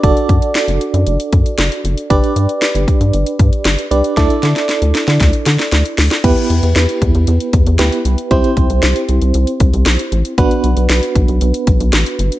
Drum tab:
CC |----------------|----------------|----------------|x---------------|
HH |xxxxxxxxxxxxxxxx|xxxxxxxxxxxxxxxx|xxxxxxxxxxxxxxox|xxxxxxxxxxxxxxxx|
SD |----o-------o---|----o-------o---|o-ooo-ooo-ooo-oo|----o-------o---|
BD |o-o-------o-----|o-----o---o-----|o-------o-------|o-----o---o-----|

CC |----------------|----------------|
HH |xxxxxxxxxxxxxxxx|xxxxxxxxxxxxxxxx|
SD |----o-------o---|----o-------o---|
BD |o-o-------o-----|o-----o---o-----|